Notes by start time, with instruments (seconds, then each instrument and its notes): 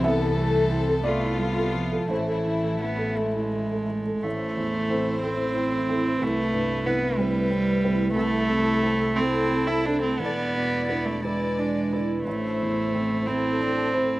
Already playing: double bass C2
0.04 felt piano C2 E5, cello E3, viola B3, violin section A4, analog synth pad E5 A5
0.20 felt piano A4
0.37 viola A3, felt piano E4
0.55 felt piano A3
0.70 viola C4, felt piano E4
0.88 felt piano A4
1.04 cello A3, felt piano A3 D5, viola B3, violin section F4
1.23 felt piano E4
1.38 cello G3, felt piano A3
1.57 felt piano A4
1.73 cello F3, felt piano A3
1.92 felt piano A4
2.09 felt piano A1 C5, double bass A1, cello E3, viola A3, violin section E4
2.27 felt piano A4
2.45 felt piano E4
2.64 felt piano A3
2.81 cello B3, felt piano E4
2.98 felt piano A4
3.18 cello G#3, felt piano A3
3.36 felt piano E4
3.54 felt piano A3
3.72 felt piano A4
3.89 felt piano A3
4.06 felt piano A4
4.23 felt piano A1, double bass A1, cello A3, analog synth pad A3 E4 A4, viola E4, violin section C5
4.57 felt piano E2
4.90 felt piano C4 E4 A4
5.23 felt piano C4 E4 A4, cello C4
5.57 felt piano C4
5.89 felt piano C4 E4 A4
6.21 felt piano C2, double bass C2, cello A3, analog synth pad B4, violin section B4
6.54 felt piano G2
6.86 felt piano C3 E4 B4, cello B3
7.18 cello G3, felt piano C4 E4 B4
7.50 felt piano C4
7.84 felt piano C4 E4 B4
8.14 felt piano C2, cello A3, viola E4, analog synth pad A4, violin section A4
8.49 felt piano C3
8.83 felt piano C4 E4 A4
9.17 cello C4, felt piano C4 E4 A4, viola E4, violin section A4
9.51 felt piano C4
9.67 cello E4
9.85 felt piano C4 E4 A4, cello D4
10.02 cello C4
10.19 double bass E1, felt piano E2, cello B3, analog synth pad D4 E4 B4, viola E4, violin section D5
10.55 felt piano B2
10.89 cello B3, felt piano D4 E4 B4
11.06 cello A3
11.23 cello G#3, felt piano D4 E4 B4, viola E4, violin section D5
11.58 viola D4, felt piano D4
11.93 felt piano D4 E4 B4, viola E4
12.25 double bass A1, felt piano A1, cello A3, analog synth pad A3 C5, viola E4, violin section C5
12.61 felt piano E2
12.95 felt piano C4 E4 C5
13.26 cello C4, felt piano C4 E4 C5, viola E4, violin section A4
13.60 felt piano C4, viola D4
13.94 felt piano C4 E4 C5, viola E4